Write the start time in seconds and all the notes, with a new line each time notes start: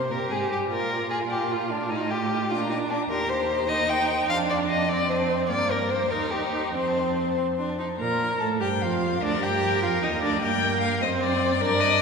Already playing: A#3 C5
0.10 A#2 G4 A#4
0.29 G#2 G#4
0.50 G2 G4
0.70 A#2 F4 A#4 D5
0.80 F5
0.90 D5
1.01 F5
1.10 G#4 D5
1.20 F5
1.29 G4 D5
1.40 F5
1.50 F4 D5
1.61 F5
1.71 D4 D5
1.80 F5
1.90 A2 D#4 D#5
1.99 F5
2.10 G4 D#5
2.20 F5
2.31 D#5
2.41 F5
2.50 A#2 D4 F4 D6
2.61 A#5
2.70 D#4 D6
2.80 A#5
2.90 D4 D6
3.02 A#5
3.10 D#2 G4 A#4 C6
3.21 A#5
3.29 C5 C6
3.40 A#5
3.50 C6
3.59 A#5
3.68 D#4 D#5 C6
3.79 A#5
3.89 G5 C6
3.99 A#5
4.10 C6
4.18 A#5
4.28 F2 D4 F5 C6
4.36 A5
4.46 D5 C6
4.57 A5
4.68 D#5 C6
4.78 A5
4.88 C4 D5 C6
4.98 A5
5.08 C5 C6
5.19 A5
5.29 C6
5.39 A5
5.48 G2 A#3 D5 G5
5.58 A#5
5.69 A#4 G5
5.80 A#5
5.90 C5 G5
6.01 A#5
6.10 D#2 D#4 A#4 C6
6.22 A#5
6.31 G4 C6
6.42 A#5
6.55 C6
6.66 A#5
6.74 F2 C4 C5 C6
6.88 A5
6.98 C6
7.08 A5
7.19 C6
7.28 A5
7.37 C4 C6
7.47 A5
7.57 D4 C6
7.69 A5
7.79 D#4 C6
7.89 A5
7.98 A#2 A#4 A#5
8.40 A2 A4 A5
8.60 G2 G4 C5 G5
8.81 F2 F4 F5
9.21 D2 D4 A#4 D5
9.42 G2 G4 G5
9.82 F2 F4 F5
10.01 D#2 D#4 D#5
10.21 D2 D4 D5
10.42 G2 A#3 A#4 G5
10.81 F5
11.01 F#2 C4 C5 D#5
11.20 D5
11.61 G2 D4 A#4 D5
11.80 D#5